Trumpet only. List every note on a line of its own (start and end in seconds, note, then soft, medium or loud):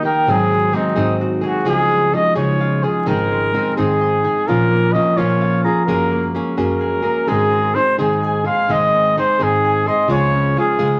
0.05 0.32 A#4 medium
0.30 0.76 G#4 medium
0.75 1.17 D#4 medium
1.46 1.66 F#4 medium
1.69 2.16 G#4 medium
2.14 2.36 D#5 medium
2.36 2.86 C#5 medium
2.84 3.09 G#4 medium
3.08 3.77 A#4 medium
3.77 4.49 G#4 medium
4.47 4.94 A#4 medium
4.93 5.19 D#5 medium
5.17 5.64 C#5 medium
5.64 5.86 G#4 medium
5.86 6.27 A#4 medium
6.58 7.30 A#4 medium
7.28 7.76 G#4 medium
7.75 7.98 C5 medium
7.99 8.47 G#4 medium
8.46 8.73 F5 medium
8.71 9.18 D#5 medium
9.18 9.45 C5 medium
9.43 9.89 G#4 medium
9.88 10.10 D#5 medium
10.11 10.54 C#5 medium
10.59 10.99 G#4 medium